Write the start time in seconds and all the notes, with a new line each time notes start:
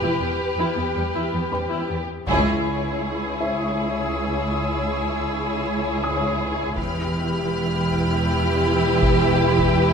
Already playing: G4 B4 B5 C#6 F6
0.02 E1 E2 E4
0.22 E2 B3
0.58 E2 E4
0.78 E2 B3
0.96 E2 G3
1.15 E2 E4
1.34 E2 B3
1.52 E2 G3 B4 B5
1.71 E2 E4
1.90 E2 B3
2.27 C#2 E4 G#4 C#5 C#6, taiko
3.02 D#6
3.41 E5
3.79 E6
6.04 D#6
6.77 E1 E2 E4 G4 B4 B5 F6, taiko
7.90 taiko
9.02 taiko
9.29 E6
9.59 taiko